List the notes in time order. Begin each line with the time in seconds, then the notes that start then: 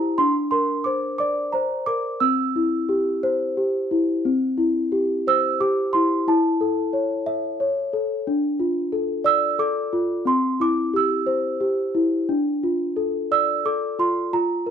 Already playing: E4 G4 C5 A#5
0.18 D4 C6
0.51 A#4 C6
0.84 C5 D6
1.18 D5 D6
1.52 C5 A#5
1.86 A#4 D6
2.20 C4 E6
2.56 E4
2.89 G4
3.23 C5
3.57 G4
3.91 E4
4.25 C4
4.58 E4
4.92 G4
5.27 C5 E6
5.61 G4 D6
5.93 E4 C6
6.28 E4 A5
6.61 A4
6.93 C#5
7.26 E5
7.60 C#5
7.93 A4
8.27 D4
8.60 F4
8.92 A4
9.24 D5 E6
9.59 A4 D6
9.93 F4
10.25 C4 C6
10.60 E4 D6
10.94 G4 E6
11.26 C5
11.61 G4
11.95 E4
12.29 D4
12.63 F4
12.96 A4
13.32 D5 E6
13.65 A4 D6
13.99 F4 C6
14.33 F4 A#5
14.66 A#4